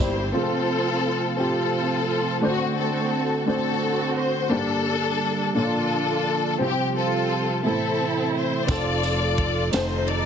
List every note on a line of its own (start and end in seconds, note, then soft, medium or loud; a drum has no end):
0.00 0.31 G1 medium
0.00 0.36 C3 medium
0.00 0.35 A#3 loud
0.00 0.30 C4 medium
0.00 0.32 C4 medium
0.00 0.30 E4 medium
0.00 0.31 E4 medium
0.00 0.35 E4 medium
0.00 0.30 G4 medium
0.00 0.31 G4 medium
0.00 0.36 G4 medium
0.00 0.36 A4 loud
0.00 0.36 A#4 medium
0.00 0.32 C5 medium
0.00 0.34 C5 medium
0.00 0.15 D5 medium
0.00 kick medium
0.00 tambourine medium
0.16 0.49 C5 medium
0.32 2.41 C3 medium
0.32 2.41 F3 medium
0.32 2.41 A3 medium
0.32 1.01 C4 medium
0.32 1.35 C4 medium
0.32 1.02 F4 medium
0.32 1.35 F4 medium
0.32 2.41 F4 medium
0.32 0.41 G#4 medium
0.32 1.35 A4 loud
0.32 4.48 A4 medium
0.42 1.06 A4 medium
1.36 2.05 C4 medium
1.36 2.39 C4 medium
1.36 2.06 F4 medium
1.36 2.39 F4 medium
1.36 2.07 G4 medium
1.36 2.39 A4 loud
2.41 5.52 D3 medium
2.41 3.43 D3 medium
2.41 3.10 A3 medium
2.41 4.49 A3 medium
2.41 3.44 A3 medium
2.41 3.10 C4 medium
2.41 4.49 C4 medium
2.41 2.77 C4 medium
2.41 3.11 D4 medium
2.41 2.49 F4 medium
2.41 4.49 F#4 medium
2.41 2.78 F#4 loud
2.41 3.12 C5 loud
2.50 3.14 F#4 medium
2.78 3.48 C4 medium
2.78 3.48 F#4 medium
2.78 3.47 A4 medium
3.45 4.14 A3 medium
3.45 4.15 C4 medium
3.45 4.48 C4 medium
3.45 4.15 D4 medium
3.45 4.16 F#4 medium
3.45 4.13 A4 loud
3.45 4.16 C5 medium
3.49 4.48 F#4 medium
4.17 4.52 C5 loud
4.49 5.51 G2 medium
4.49 5.54 G3 medium
4.49 5.18 A#3 medium
4.49 5.54 A#3 medium
4.49 5.19 D4 medium
4.49 5.54 G4 medium
4.49 5.20 G4 medium
4.49 5.55 A4 loud
4.49 5.54 D5 medium
4.53 5.53 D4 medium
5.54 6.56 A#2 medium
5.54 6.59 D3 medium
5.54 6.59 F3 medium
5.54 6.23 A#3 medium
5.54 6.59 A#3 medium
5.54 6.23 D4 medium
5.54 6.56 D4 medium
5.54 7.62 F4 medium
5.54 6.24 F4 medium
5.54 6.56 F4 medium
5.54 6.56 A4 loud
5.54 6.59 A4 medium
5.54 6.24 A4 medium
5.54 5.63 C#5 medium
5.64 6.28 D5 medium
6.58 7.60 C3 medium
6.58 7.63 C3 medium
6.58 7.63 F3 medium
6.58 7.63 G3 medium
6.58 7.27 C4 medium
6.58 6.95 C4 medium
6.58 6.67 E4 medium
6.58 7.63 G4 medium
6.58 6.95 G4 loud
6.58 7.29 G4 medium
6.67 7.31 F4 medium
6.96 7.61 C4 medium
6.96 7.61 F4 medium
6.96 7.61 A4 loud
7.63 8.65 A2 medium
7.63 9.70 C3 medium
7.63 8.67 E3 medium
7.63 8.66 A3 medium
7.63 7.70 B3 medium
7.63 8.65 C4 medium
7.63 8.67 E4 medium
7.63 8.32 E4 medium
7.63 8.65 E4 medium
7.63 10.26 A4 medium
7.63 8.30 A4 medium
7.63 8.33 A4 medium
7.69 8.35 C4 medium
8.34 8.69 C5 loud
8.67 9.69 F1 loud
8.67 9.71 F3 medium
8.67 10.26 A3 medium
8.67 9.35 C4 medium
8.67 10.26 F4 medium
8.67 9.37 F4 medium
8.67 9.69 F4 medium
8.67 9.69 A4 medium
8.67 9.73 D5 loud
8.67 kick loud
8.67 ride bell medium
8.67 tambourine medium
8.71 9.37 A4 medium
9.03 ride bell soft
9.03 tambourine medium
9.38 kick loud
9.38 ride bell medium
9.71 10.26 F1 loud
9.71 10.26 D#3 medium
9.71 10.26 A3 medium
9.71 10.26 C4 medium
9.71 10.26 D#4 medium
9.71 10.26 F4 medium
9.71 10.26 A4 medium
9.71 10.05 C5 loud
9.71 10.26 C5 medium
9.71 snare loud
9.71 ride bell medium
9.71 tambourine loud
10.08 10.26 D5 loud
10.08 ride bell soft